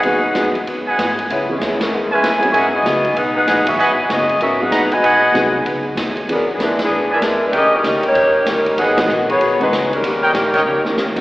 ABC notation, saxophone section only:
X:1
M:4/4
L:1/8
Q:"Swing" 1/4=192
K:G#m
V:1 name="Saxophone section"
[DGBf]3 z4 z | [B,EGc] [G,CEB] [B,EGc] [G,CEA]2 [G,CEB]2 [B,EGc] | [CFAe] [B,FGd]3 [DGBf] [DGBf]2 [B,FGe]- | [B,FGe] z [B,FGd]2 [CFAe] [DGBf]2 [FBdg]- |
[FBdg]3 z4 z | [F,B,=DA] [E,B,DG] [G,DEB] [E,B,DG]2 [G,DEA]2 [G,DEB] | [C=GAd] [=G,CDA]2 [A,DGc]3 [G,CDA]2 | [F,B,DG] [D,G,B,F]2 [B,FGc]2 [G,DFB]2 [=G,CDA]- |
[=G,CDA]6- [G,CDA] z |]